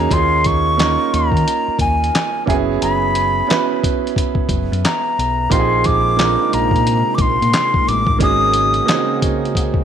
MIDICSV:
0, 0, Header, 1, 7, 480
1, 0, Start_track
1, 0, Tempo, 674157
1, 80, Time_signature, 4, 2, 24, 8
1, 7006, End_track
2, 0, Start_track
2, 0, Title_t, "Flute"
2, 0, Program_c, 0, 73
2, 0, Note_on_c, 0, 82, 79
2, 92, Note_on_c, 0, 84, 92
2, 103, Note_off_c, 0, 82, 0
2, 330, Note_on_c, 0, 85, 100
2, 341, Note_off_c, 0, 84, 0
2, 810, Note_on_c, 0, 82, 91
2, 821, Note_off_c, 0, 85, 0
2, 1285, Note_off_c, 0, 82, 0
2, 1288, Note_on_c, 0, 80, 85
2, 1736, Note_off_c, 0, 80, 0
2, 1768, Note_on_c, 0, 80, 78
2, 1821, Note_off_c, 0, 80, 0
2, 2009, Note_on_c, 0, 83, 91
2, 2696, Note_off_c, 0, 83, 0
2, 3451, Note_on_c, 0, 82, 76
2, 3929, Note_on_c, 0, 84, 85
2, 3940, Note_off_c, 0, 82, 0
2, 4171, Note_on_c, 0, 86, 100
2, 4182, Note_off_c, 0, 84, 0
2, 4656, Note_on_c, 0, 82, 92
2, 4666, Note_off_c, 0, 86, 0
2, 5089, Note_on_c, 0, 86, 69
2, 5100, Note_off_c, 0, 82, 0
2, 5136, Note_on_c, 0, 84, 94
2, 5146, Note_off_c, 0, 86, 0
2, 5611, Note_on_c, 0, 86, 99
2, 5621, Note_off_c, 0, 84, 0
2, 5846, Note_off_c, 0, 86, 0
2, 5856, Note_on_c, 0, 87, 108
2, 6540, Note_off_c, 0, 87, 0
2, 7006, End_track
3, 0, Start_track
3, 0, Title_t, "Grand piano"
3, 0, Program_c, 1, 0
3, 0, Control_c, 1, 64, 127
3, 0, Note_on_c, 1, 58, 69
3, 0, Note_on_c, 1, 61, 72
3, 0, Note_on_c, 1, 63, 68
3, 0, Note_on_c, 1, 66, 72
3, 0, Note_on_c, 1, 68, 91
3, 70, Note_off_c, 1, 58, 0
3, 70, Note_on_c, 1, 58, 61
3, 74, Note_off_c, 1, 66, 0
3, 76, Note_off_c, 1, 61, 0
3, 76, Note_on_c, 1, 61, 58
3, 77, Note_off_c, 1, 68, 0
3, 83, Note_off_c, 1, 63, 0
3, 83, Note_on_c, 1, 63, 58
3, 90, Control_c, 1, 64, 0
3, 91, Note_on_c, 1, 65, 65
3, 98, Note_on_c, 1, 68, 75
3, 225, Control_c, 1, 64, 127
3, 528, Note_off_c, 1, 58, 0
3, 532, Note_off_c, 1, 61, 0
3, 535, Note_off_c, 1, 63, 0
3, 539, Note_off_c, 1, 65, 0
3, 543, Note_off_c, 1, 68, 0
3, 550, Note_on_c, 1, 58, 59
3, 557, Note_on_c, 1, 61, 59
3, 566, Note_on_c, 1, 63, 60
3, 572, Note_on_c, 1, 65, 55
3, 579, Note_on_c, 1, 70, 71
3, 1462, Note_off_c, 1, 58, 0
3, 1465, Note_off_c, 1, 61, 0
3, 1469, Note_off_c, 1, 63, 0
3, 1473, Note_off_c, 1, 65, 0
3, 1476, Note_off_c, 1, 70, 0
3, 1750, Note_on_c, 1, 58, 58
3, 1755, Note_on_c, 1, 61, 69
3, 1764, Note_on_c, 1, 64, 74
3, 1769, Control_c, 1, 64, 0
3, 1771, Note_on_c, 1, 66, 61
3, 1778, Note_on_c, 1, 68, 83
3, 1797, Note_on_c, 1, 59, 71
3, 1813, Note_off_c, 1, 58, 0
3, 1910, Control_c, 1, 64, 127
3, 2438, Note_off_c, 1, 61, 0
3, 2442, Note_off_c, 1, 64, 0
3, 2446, Note_off_c, 1, 66, 0
3, 2449, Note_off_c, 1, 68, 0
3, 2459, Note_off_c, 1, 59, 0
3, 2473, Note_on_c, 1, 59, 67
3, 2478, Note_on_c, 1, 61, 60
3, 2486, Note_on_c, 1, 64, 60
3, 2492, Note_on_c, 1, 66, 60
3, 2499, Note_on_c, 1, 71, 73
3, 3383, Note_off_c, 1, 59, 0
3, 3386, Note_off_c, 1, 61, 0
3, 3390, Note_off_c, 1, 64, 0
3, 3392, Note_off_c, 1, 66, 0
3, 3396, Note_off_c, 1, 71, 0
3, 3913, Note_on_c, 1, 58, 65
3, 3918, Note_on_c, 1, 60, 64
3, 3927, Note_on_c, 1, 63, 65
3, 3931, Note_on_c, 1, 65, 63
3, 3932, Control_c, 1, 64, 0
3, 3941, Note_on_c, 1, 67, 59
3, 3984, Note_on_c, 1, 68, 78
3, 3989, Note_off_c, 1, 67, 0
3, 4045, Control_c, 1, 64, 127
3, 4370, Note_off_c, 1, 58, 0
3, 4373, Note_off_c, 1, 60, 0
3, 4377, Note_off_c, 1, 63, 0
3, 4379, Note_off_c, 1, 65, 0
3, 4391, Note_on_c, 1, 58, 65
3, 4396, Note_on_c, 1, 60, 53
3, 4404, Note_on_c, 1, 62, 47
3, 4406, Note_off_c, 1, 68, 0
3, 4412, Note_on_c, 1, 65, 59
3, 4419, Note_on_c, 1, 70, 69
3, 4451, Note_on_c, 1, 63, 59
3, 4460, Note_off_c, 1, 62, 0
3, 5302, Note_off_c, 1, 58, 0
3, 5305, Note_off_c, 1, 60, 0
3, 5313, Note_off_c, 1, 65, 0
3, 5316, Note_off_c, 1, 70, 0
3, 5332, Note_off_c, 1, 63, 0
3, 5828, Note_on_c, 1, 58, 63
3, 5837, Note_on_c, 1, 61, 64
3, 5841, Note_on_c, 1, 63, 56
3, 5847, Note_on_c, 1, 66, 64
3, 5849, Control_c, 1, 64, 0
3, 5856, Note_on_c, 1, 68, 71
3, 5984, Control_c, 1, 64, 127
3, 6288, Note_off_c, 1, 58, 0
3, 6292, Note_off_c, 1, 61, 0
3, 6294, Note_off_c, 1, 63, 0
3, 6297, Note_off_c, 1, 66, 0
3, 6302, Note_off_c, 1, 68, 0
3, 6306, Note_on_c, 1, 58, 65
3, 6314, Note_on_c, 1, 60, 51
3, 6320, Note_on_c, 1, 63, 56
3, 6327, Note_on_c, 1, 66, 59
3, 6335, Note_on_c, 1, 68, 71
3, 6361, Note_on_c, 1, 61, 56
3, 6375, Note_off_c, 1, 60, 0
3, 7006, Note_off_c, 1, 58, 0
3, 7006, Note_off_c, 1, 61, 0
3, 7006, Note_off_c, 1, 63, 0
3, 7006, Note_off_c, 1, 66, 0
3, 7006, Note_off_c, 1, 68, 0
3, 7006, End_track
4, 0, Start_track
4, 0, Title_t, "String machine"
4, 0, Program_c, 2, 50
4, 3920, Note_on_c, 2, 48, 79
4, 3922, Note_on_c, 2, 56, 70
4, 3923, Note_on_c, 2, 63, 80
4, 3924, Note_on_c, 2, 58, 68
4, 5821, Note_off_c, 2, 48, 0
4, 5823, Note_off_c, 2, 63, 0
4, 5842, Note_on_c, 2, 66, 92
4, 5843, Note_on_c, 2, 49, 71
4, 7006, Note_off_c, 2, 49, 0
4, 7006, Note_off_c, 2, 56, 0
4, 7006, Note_off_c, 2, 58, 0
4, 7006, Note_off_c, 2, 66, 0
4, 7006, End_track
5, 0, Start_track
5, 0, Title_t, "Fingered electric bass"
5, 0, Program_c, 3, 33
5, 81, Note_on_c, 3, 39, 93
5, 682, Note_off_c, 3, 39, 0
5, 808, Note_on_c, 3, 39, 85
5, 937, Note_off_c, 3, 39, 0
5, 944, Note_on_c, 3, 51, 95
5, 1026, Note_off_c, 3, 51, 0
5, 1276, Note_on_c, 3, 39, 77
5, 1489, Note_off_c, 3, 39, 0
5, 1764, Note_on_c, 3, 30, 85
5, 1974, Note_off_c, 3, 30, 0
5, 2007, Note_on_c, 3, 30, 95
5, 2427, Note_off_c, 3, 30, 0
5, 3199, Note_on_c, 3, 30, 76
5, 3332, Note_off_c, 3, 30, 0
5, 3360, Note_on_c, 3, 42, 94
5, 3435, Note_off_c, 3, 42, 0
5, 3692, Note_on_c, 3, 35, 77
5, 3898, Note_off_c, 3, 35, 0
5, 3926, Note_on_c, 3, 34, 104
5, 4525, Note_off_c, 3, 34, 0
5, 4652, Note_on_c, 3, 34, 75
5, 4779, Note_off_c, 3, 34, 0
5, 4783, Note_on_c, 3, 46, 87
5, 4998, Note_off_c, 3, 46, 0
5, 5119, Note_on_c, 3, 34, 92
5, 5252, Note_off_c, 3, 34, 0
5, 5281, Note_on_c, 3, 46, 83
5, 5356, Note_off_c, 3, 46, 0
5, 5612, Note_on_c, 3, 33, 83
5, 5819, Note_off_c, 3, 33, 0
5, 5844, Note_on_c, 3, 32, 102
5, 6265, Note_off_c, 3, 32, 0
5, 7006, End_track
6, 0, Start_track
6, 0, Title_t, "Muted fingered electric bass strokes"
6, 1196, Note_on_c, 9, 29, 49
6, 1267, Note_off_c, 9, 29, 0
6, 7006, End_track
7, 0, Start_track
7, 0, Title_t, "Drums"
7, 76, Note_on_c, 9, 36, 104
7, 80, Note_on_c, 9, 42, 80
7, 148, Note_off_c, 9, 36, 0
7, 151, Note_off_c, 9, 42, 0
7, 316, Note_on_c, 9, 42, 67
7, 327, Note_on_c, 9, 36, 88
7, 387, Note_off_c, 9, 42, 0
7, 398, Note_off_c, 9, 36, 0
7, 566, Note_on_c, 9, 42, 75
7, 571, Note_on_c, 9, 38, 100
7, 575, Note_on_c, 9, 39, 86
7, 637, Note_off_c, 9, 42, 0
7, 643, Note_off_c, 9, 38, 0
7, 646, Note_off_c, 9, 39, 0
7, 810, Note_on_c, 9, 42, 69
7, 882, Note_off_c, 9, 42, 0
7, 938, Note_on_c, 9, 36, 74
7, 974, Note_on_c, 9, 42, 33
7, 1009, Note_off_c, 9, 36, 0
7, 1045, Note_off_c, 9, 42, 0
7, 1051, Note_on_c, 9, 42, 81
7, 1123, Note_off_c, 9, 42, 0
7, 1273, Note_on_c, 9, 36, 88
7, 1277, Note_on_c, 9, 42, 63
7, 1344, Note_off_c, 9, 36, 0
7, 1348, Note_off_c, 9, 42, 0
7, 1451, Note_on_c, 9, 42, 35
7, 1522, Note_off_c, 9, 42, 0
7, 1530, Note_on_c, 9, 42, 84
7, 1534, Note_on_c, 9, 38, 103
7, 1537, Note_on_c, 9, 39, 80
7, 1601, Note_off_c, 9, 42, 0
7, 1605, Note_off_c, 9, 38, 0
7, 1608, Note_off_c, 9, 39, 0
7, 1762, Note_on_c, 9, 36, 91
7, 1779, Note_on_c, 9, 42, 55
7, 1833, Note_off_c, 9, 36, 0
7, 1850, Note_off_c, 9, 42, 0
7, 2008, Note_on_c, 9, 42, 76
7, 2079, Note_off_c, 9, 42, 0
7, 2244, Note_on_c, 9, 42, 67
7, 2315, Note_off_c, 9, 42, 0
7, 2494, Note_on_c, 9, 42, 73
7, 2499, Note_on_c, 9, 38, 112
7, 2502, Note_on_c, 9, 39, 87
7, 2565, Note_off_c, 9, 42, 0
7, 2570, Note_off_c, 9, 38, 0
7, 2574, Note_off_c, 9, 39, 0
7, 2731, Note_on_c, 9, 36, 98
7, 2736, Note_on_c, 9, 42, 76
7, 2802, Note_off_c, 9, 36, 0
7, 2807, Note_off_c, 9, 42, 0
7, 2898, Note_on_c, 9, 42, 31
7, 2964, Note_on_c, 9, 36, 83
7, 2970, Note_off_c, 9, 42, 0
7, 2976, Note_on_c, 9, 42, 77
7, 3035, Note_off_c, 9, 36, 0
7, 3047, Note_off_c, 9, 42, 0
7, 3097, Note_on_c, 9, 36, 88
7, 3168, Note_off_c, 9, 36, 0
7, 3195, Note_on_c, 9, 36, 87
7, 3198, Note_on_c, 9, 42, 57
7, 3266, Note_off_c, 9, 36, 0
7, 3269, Note_off_c, 9, 42, 0
7, 3370, Note_on_c, 9, 42, 36
7, 3441, Note_off_c, 9, 42, 0
7, 3451, Note_on_c, 9, 42, 85
7, 3455, Note_on_c, 9, 38, 102
7, 3458, Note_on_c, 9, 39, 88
7, 3523, Note_off_c, 9, 42, 0
7, 3526, Note_off_c, 9, 38, 0
7, 3530, Note_off_c, 9, 39, 0
7, 3699, Note_on_c, 9, 42, 57
7, 3770, Note_off_c, 9, 42, 0
7, 3921, Note_on_c, 9, 36, 111
7, 3927, Note_on_c, 9, 42, 84
7, 3993, Note_off_c, 9, 36, 0
7, 3998, Note_off_c, 9, 42, 0
7, 4160, Note_on_c, 9, 42, 64
7, 4171, Note_on_c, 9, 36, 88
7, 4231, Note_off_c, 9, 42, 0
7, 4242, Note_off_c, 9, 36, 0
7, 4406, Note_on_c, 9, 42, 72
7, 4412, Note_on_c, 9, 38, 113
7, 4415, Note_on_c, 9, 39, 94
7, 4478, Note_off_c, 9, 42, 0
7, 4483, Note_off_c, 9, 38, 0
7, 4486, Note_off_c, 9, 39, 0
7, 4651, Note_on_c, 9, 42, 70
7, 4722, Note_off_c, 9, 42, 0
7, 4779, Note_on_c, 9, 36, 75
7, 4811, Note_on_c, 9, 42, 31
7, 4850, Note_off_c, 9, 36, 0
7, 4882, Note_off_c, 9, 42, 0
7, 4890, Note_on_c, 9, 42, 68
7, 4961, Note_off_c, 9, 42, 0
7, 5113, Note_on_c, 9, 36, 95
7, 5116, Note_on_c, 9, 42, 66
7, 5185, Note_off_c, 9, 36, 0
7, 5187, Note_off_c, 9, 42, 0
7, 5286, Note_on_c, 9, 42, 35
7, 5357, Note_off_c, 9, 42, 0
7, 5365, Note_on_c, 9, 42, 79
7, 5369, Note_on_c, 9, 38, 98
7, 5372, Note_on_c, 9, 39, 93
7, 5436, Note_off_c, 9, 42, 0
7, 5440, Note_off_c, 9, 38, 0
7, 5443, Note_off_c, 9, 39, 0
7, 5511, Note_on_c, 9, 36, 96
7, 5583, Note_off_c, 9, 36, 0
7, 5614, Note_on_c, 9, 42, 56
7, 5685, Note_off_c, 9, 42, 0
7, 5743, Note_on_c, 9, 36, 102
7, 5815, Note_off_c, 9, 36, 0
7, 5839, Note_on_c, 9, 36, 109
7, 5842, Note_on_c, 9, 42, 86
7, 5910, Note_off_c, 9, 36, 0
7, 5913, Note_off_c, 9, 42, 0
7, 6077, Note_on_c, 9, 42, 70
7, 6148, Note_off_c, 9, 42, 0
7, 6222, Note_on_c, 9, 42, 31
7, 6294, Note_off_c, 9, 42, 0
7, 6325, Note_on_c, 9, 42, 78
7, 6331, Note_on_c, 9, 38, 110
7, 6334, Note_on_c, 9, 39, 90
7, 6396, Note_off_c, 9, 42, 0
7, 6402, Note_off_c, 9, 38, 0
7, 6405, Note_off_c, 9, 39, 0
7, 6567, Note_on_c, 9, 36, 92
7, 6567, Note_on_c, 9, 42, 69
7, 6638, Note_off_c, 9, 36, 0
7, 6639, Note_off_c, 9, 42, 0
7, 6731, Note_on_c, 9, 42, 28
7, 6801, Note_on_c, 9, 36, 87
7, 6802, Note_off_c, 9, 42, 0
7, 6812, Note_on_c, 9, 42, 69
7, 6872, Note_off_c, 9, 36, 0
7, 6883, Note_off_c, 9, 42, 0
7, 6934, Note_on_c, 9, 36, 82
7, 7005, Note_off_c, 9, 36, 0
7, 7006, End_track
0, 0, End_of_file